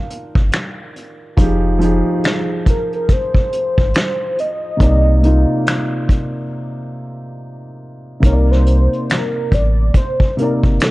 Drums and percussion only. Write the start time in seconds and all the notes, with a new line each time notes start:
0.10 closed hi-hat
0.35 kick
0.52 finger snap, snare, closed hi-hat
0.96 closed hi-hat
1.38 kick, closed hi-hat
1.81 closed hi-hat
2.24 finger snap, snare, closed hi-hat
2.66 kick, closed hi-hat
2.93 closed hi-hat
3.09 kick, closed hi-hat
3.35 kick
3.52 closed hi-hat
3.78 kick, closed hi-hat
3.94 finger snap, snare, closed hi-hat
4.38 closed hi-hat
4.80 kick, closed hi-hat
5.24 closed hi-hat
5.66 finger snap, snare, closed hi-hat
6.09 kick, closed hi-hat
8.23 kick, closed hi-hat
8.52 snare
8.66 closed hi-hat
8.93 closed hi-hat
9.09 finger snap, snare, closed hi-hat
9.52 kick, closed hi-hat
9.94 kick, closed hi-hat
10.20 kick
10.38 closed hi-hat
10.63 kick, closed hi-hat
10.80 finger snap, snare, closed hi-hat